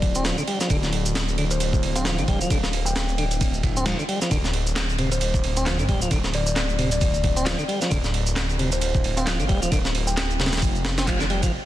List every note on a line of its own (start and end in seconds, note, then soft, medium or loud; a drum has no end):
0.00 0.33 D1 loud
0.00 kick medium
0.00 ride medium
0.15 0.24 C4 medium
0.15 shaker medium
0.25 0.37 F3 loud
0.25 snare loud
0.25 ride medium
0.25 shaker medium
0.38 0.43 D3 medium
0.38 shaker soft
0.48 0.59 G3 medium
0.48 ride medium
0.60 0.69 F3 medium
0.60 snare soft
0.60 shaker medium
0.70 2.20 D1 medium
0.70 0.77 D3 medium
0.70 kick loud
0.70 ride medium
0.70 shaker medium
0.83 snare soft
0.83 shaker soft
0.93 ride medium
1.06 shaker medium
1.15 snare loud
1.15 ride medium
1.15 shaker medium
1.28 shaker soft
1.38 1.45 D3 medium
1.38 ride medium
1.51 1.57 C5 medium
1.51 ride soft
1.51 shaker medium
1.60 1.68 C5 medium
1.60 ride medium
1.60 shaker medium
1.73 kick medium
1.73 shaker soft
1.83 ride medium
1.96 2.05 C4 medium
1.96 2.11 F5 medium
1.96 ride soft
1.96 shaker medium
2.05 2.17 F3 loud
2.05 snare loud
2.05 ride medium
2.05 shaker medium
2.18 2.26 A1 medium
2.18 2.24 D3 medium
2.18 ride soft
2.18 shaker soft
2.28 2.46 D1 loud
2.28 2.39 G3 medium
2.28 kick medium
2.28 ride medium
2.41 2.50 F3 medium
2.41 shaker medium
2.50 3.94 D1 loud
2.50 2.58 D3 medium
2.50 kick loud
2.50 ride medium
2.50 shaker soft
2.64 snare soft
2.64 shaker soft
2.73 ride medium
2.86 3.48 G5 medium
2.86 shaker medium
2.96 snare loud
2.96 ride medium
2.96 shaker soft
3.09 shaker soft
3.18 3.25 D3 medium
3.18 ride medium
3.31 ride soft
3.31 shaker medium
3.41 kick loud
3.41 ride medium
3.41 shaker soft
3.54 shaker soft
3.63 kick medium
3.63 ride medium
3.77 3.85 C4 medium
3.77 shaker medium
3.86 3.98 F3 medium
3.86 snare loud
3.86 ride medium
3.86 shaker soft
3.99 4.04 D3 medium
3.99 shaker soft
4.09 4.20 G3 medium
4.09 ride medium
4.22 4.30 F3 medium
4.22 snare soft
4.22 shaker medium
4.31 5.80 D1 loud
4.31 4.38 D3 medium
4.31 kick loud
4.31 ride medium
4.31 shaker soft
4.44 snare soft
4.44 shaker soft
4.54 ride medium
4.67 shaker medium
4.76 snare loud
4.76 clap loud
4.76 ride medium
4.76 shaker soft
4.89 shaker soft
4.98 5.10 C3 loud
4.98 ride medium
5.12 5.18 C5 medium
5.12 ride soft
5.12 shaker medium
5.21 5.30 C5 medium
5.21 ride medium
5.21 shaker soft
5.34 kick medium
5.34 shaker soft
5.44 ride medium
5.57 5.65 C4 medium
5.57 ride soft
5.57 shaker medium
5.66 5.78 F3 medium
5.66 snare loud
5.66 clap loud
5.66 ride medium
5.66 shaker soft
5.79 5.86 A1 medium
5.79 5.84 D3 medium
5.79 ride soft
5.79 shaker soft
5.89 6.06 D1 loud
5.89 6.00 G3 medium
5.89 kick medium
5.89 ride medium
6.02 6.10 F3 medium
6.02 shaker medium
6.11 7.54 D1 loud
6.11 6.18 D3 medium
6.11 kick loud
6.11 ride medium
6.11 shaker medium
6.24 snare medium
6.24 shaker soft
6.34 6.43 D5 medium
6.34 ride medium
6.47 6.53 D5 medium
6.47 shaker medium
6.56 snare loud
6.56 clap loud
6.56 ride medium
6.56 shaker soft
6.69 shaker soft
6.79 6.90 C3 loud
6.79 ride medium
6.91 7.24 D5 medium
6.91 ride soft
6.91 shaker medium
7.01 kick loud
7.01 ride medium
7.01 shaker soft
7.14 shaker soft
7.24 kick medium
7.24 ride medium
7.37 7.45 C4 medium
7.37 shaker medium
7.46 7.58 F3 loud
7.46 snare loud
7.46 clap loud
7.46 ride medium
7.46 shaker soft
7.59 7.64 D3 medium
7.59 shaker soft
7.68 7.80 G3 medium
7.68 ride medium
7.81 7.90 F3 medium
7.81 snare soft
7.81 shaker medium
7.90 9.41 D1 medium
7.90 7.98 D3 medium
7.90 kick loud
7.90 ride medium
7.90 shaker medium
8.04 snare soft
8.04 shaker soft
8.14 ride medium
8.27 shaker medium
8.36 snare loud
8.36 clap loud
8.36 ride medium
8.36 shaker soft
8.49 shaker soft
8.59 8.70 C3 loud
8.59 ride medium
8.72 8.79 C5 medium
8.72 ride soft
8.72 shaker medium
8.81 8.90 C5 medium
8.81 ride medium
8.81 shaker medium
8.95 kick loud
8.95 shaker soft
9.04 ride medium
9.17 9.26 C4 medium
9.17 9.33 F5 medium
9.17 ride soft
9.17 shaker medium
9.26 9.38 F3 loud
9.26 snare loud
9.26 clap loud
9.26 ride medium
9.26 shaker soft
9.39 9.47 A1 medium
9.39 9.45 D3 medium
9.39 ride soft
9.39 shaker soft
9.48 9.67 D1 loud
9.48 9.60 G3 medium
9.48 kick medium
9.48 ride medium
9.62 9.71 F3 medium
9.62 shaker medium
9.71 10.62 D1 loud
9.71 9.79 D3 medium
9.71 kick loud
9.71 ride medium
9.71 shaker medium
9.85 snare medium
9.85 shaker soft
9.95 ride medium
10.07 10.70 G5 medium
10.07 shaker medium
10.17 snare loud
10.17 clap loud
10.17 ride medium
10.17 shaker medium
10.30 shaker soft
10.40 10.51 C3 loud
10.40 snare medium
10.40 ride medium
10.46 snare medium
10.46 ride medium
10.53 snare medium
10.53 ride medium
10.53 shaker medium
10.57 snare medium
10.57 ride medium
10.62 11.49 F1 medium
10.62 kick loud
10.62 ride medium
10.62 shaker medium
10.75 shaker soft
10.85 snare loud
10.85 ride medium
10.98 11.07 C4 medium
10.98 snare loud
10.98 ride medium
10.98 shaker medium
11.07 11.19 F3 loud
11.07 kick medium
11.07 clap loud
11.07 ride medium
11.07 shaker medium
11.20 11.26 D3 medium
11.20 snare soft
11.20 shaker soft
11.30 11.41 G3 medium
11.30 ride medium
11.43 11.52 F3 medium
11.43 kick loud
11.43 ride medium
11.43 shaker medium